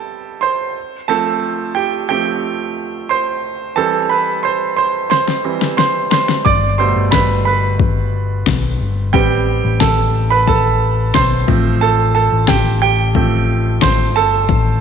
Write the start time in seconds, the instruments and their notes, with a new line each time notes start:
Already playing: grand piano G3 B3 C4 G4 A4 G5 A5
0.41 grand piano C5 C6
1.08 grand piano F3 A3 C4 A4 A5
1.75 grand piano G4 G5
2.09 grand piano F3 A3 C4 G4 G5
3.09 grand piano C5 C6
3.76 grand piano E3 G3 C4 A4 A5
4.09 grand piano B4 B5
4.43 grand piano C5 C6
4.77 grand piano C5 C6
5.10 grand piano C5 C6, snare
5.28 snare
5.44 grand piano E3 G3 C4
5.62 snare
5.77 grand piano C5 C6, snare
6.11 grand piano C5 C6, snare
6.29 snare
6.45 picked electric bass G1, grand piano D5 D6, kick
6.78 grand piano B2 G3 A3 C5 C6
6.96 picked electric bass G1
7.11 picked electric bass G1, grand piano B4 B5, kick, snare
7.45 grand piano B4 B5
7.80 kick
8.47 picked electric bass B1, kick, snare
8.81 picked electric bass G1
9.13 picked electric bass A1, grand piano G3 B3 C4 G4 G5, kick
9.65 picked electric bass A1
9.80 picked electric bass A1, grand piano A4 A5, kick, snare
10.30 grand piano B4 B5
10.47 grand piano A4 A5, kick
11.14 picked electric bass B1, grand piano C5 C6, kick, snare
11.47 picked electric bass A1, grand piano F3 A3 C4, kick
11.81 grand piano A4 A5
12.15 grand piano A4 A5
12.32 picked electric bass A1
12.48 picked electric bass A1, grand piano G4 G5, kick, snare
12.82 grand piano G4 G5
13.15 grand piano F3 A3 C4, kick
13.82 picked electric bass A1, grand piano C5 C6, kick, snare
14.16 picked electric bass G1, grand piano A4 A5
14.49 picked electric bass A1, kick, closed hi-hat